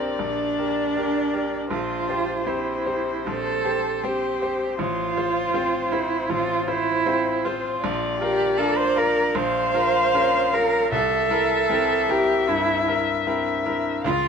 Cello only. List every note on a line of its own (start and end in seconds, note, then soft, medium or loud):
0.00 0.21 C4 medium
0.19 1.70 D4 loud
1.71 2.48 F4 loud
2.46 3.29 E4 loud
3.27 4.05 A4 loud
4.04 4.79 G4 loud
4.80 5.94 F4 loud
5.92 6.31 E4 loud
6.30 6.69 F4 loud
6.67 7.46 E4 loud
7.44 8.20 F4 loud
8.21 8.59 G4 loud
8.57 8.79 A4 loud
8.77 8.99 C5 loud
8.97 9.37 A#4 loud
9.35 10.55 C5 loud
10.53 10.92 A#4 loud
10.94 12.12 A4 loud
12.11 12.50 G4 loud
12.49 12.88 E4 loud
14.05 14.28 F4 loud